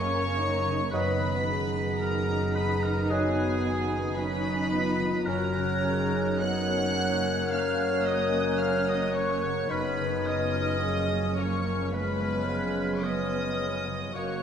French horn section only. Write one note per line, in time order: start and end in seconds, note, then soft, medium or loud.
0.00 0.93 A#4 medium
0.93 1.47 B4 medium
1.48 3.11 G#4 medium
3.12 4.19 F#4 medium
4.18 4.58 D#4 medium
4.74 5.27 F4 medium
5.28 5.84 F#4 medium
5.83 6.41 G#4 medium
6.42 9.70 A#4 medium
9.70 10.82 B4 medium
10.82 11.37 G#4 medium
11.38 11.93 A#4 medium
11.92 12.47 B4 medium
12.46 13.03 G#4 medium
13.03 13.97 B4 medium
14.14 14.43 A#4 medium